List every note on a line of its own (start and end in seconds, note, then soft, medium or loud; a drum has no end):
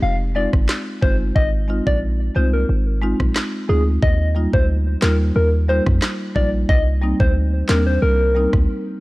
0.02 0.47 F1 loud
0.02 0.17 F5 medium
0.35 0.49 G#3 medium
0.35 0.50 C4 medium
0.35 0.50 D#4 medium
0.35 0.50 F4 medium
0.35 0.50 D5 medium
0.53 0.67 G1 medium
0.53 kick medium
0.53 cross-stick medium
0.69 snare loud
0.69 clap medium
1.01 1.32 G1 medium
1.01 1.16 G#3 medium
1.01 1.16 C4 medium
1.01 1.17 D#4 medium
1.01 1.17 F4 medium
1.01 1.16 C5 medium
1.01 kick medium
1.35 1.81 G#1 loud
1.35 1.50 D#5 loud
1.35 kick loud
1.68 1.83 G#3 medium
1.68 1.83 C4 medium
1.68 1.83 D#4 medium
1.68 1.84 F4 medium
1.87 2.30 A#1 loud
1.87 1.99 D5 medium
1.87 kick loud
2.35 2.65 C2 medium
2.35 2.49 G#3 medium
2.35 2.50 C4 medium
2.35 2.50 D#4 medium
2.35 2.50 F4 medium
2.35 2.50 C5 medium
2.53 2.66 A#4 medium
2.69 3.14 G#1 loud
3.01 3.16 G#3 medium
3.01 3.16 C4 medium
3.01 3.17 D#4 medium
3.01 3.17 F4 medium
3.20 3.34 A#1 medium
3.20 kick medium
3.20 cross-stick medium
3.36 snare loud
3.36 clap medium
3.68 3.99 D2 loud
3.68 3.83 G#3 medium
3.68 3.83 C4 medium
3.68 3.83 D#4 medium
3.68 3.84 F4 medium
3.68 3.83 G#4 medium
4.02 4.47 D#2 loud
4.02 4.29 D#5 loud
4.02 kick loud
4.35 4.49 G3 medium
4.35 4.50 A#3 medium
4.35 4.50 D#4 medium
4.35 4.50 F4 medium
4.53 4.97 D2 medium
4.53 4.66 C5 medium
4.53 kick medium
5.01 5.32 D#2 medium
5.01 5.16 G3 medium
5.01 5.16 A#3 medium
5.01 5.17 D#4 medium
5.01 5.17 F4 medium
5.01 5.16 A#4 medium
5.01 snare loud
5.01 clap medium
5.36 5.81 D#2 loud
5.36 5.50 A#4 medium
5.68 5.83 G3 medium
5.68 5.83 A#3 medium
5.68 5.83 D#4 medium
5.68 5.84 F4 medium
5.68 5.83 C5 medium
5.86 6.01 F2 medium
5.86 kick medium
5.86 cross-stick medium
6.02 snare loud
6.02 clap medium
6.35 6.65 A#1 medium
6.35 6.49 G3 medium
6.35 6.50 A#3 medium
6.35 6.50 D#4 medium
6.35 6.50 F4 medium
6.35 6.50 D5 medium
6.35 kick medium
6.69 7.14 C2 loud
6.69 6.83 D#5 loud
6.69 kick loud
7.01 7.16 G3 medium
7.01 7.16 A#3 medium
7.01 7.17 C4 medium
7.01 7.17 D#4 medium
7.20 7.63 D2 medium
7.20 7.32 C5 medium
7.20 kick medium
7.68 7.99 D#2 medium
7.68 7.83 G3 medium
7.68 7.83 A#3 medium
7.68 7.83 C4 medium
7.68 7.84 D4 medium
7.68 7.83 A#4 medium
7.68 snare loud
7.68 clap medium
7.87 7.99 C5 medium
8.02 8.47 C2 loud
8.02 8.50 A#4 loud
8.35 8.49 G3 medium
8.35 8.50 A#3 medium
8.35 8.50 C4 medium
8.35 8.50 D#4 medium
8.53 8.67 D2 medium
8.53 kick medium
8.53 cross-stick medium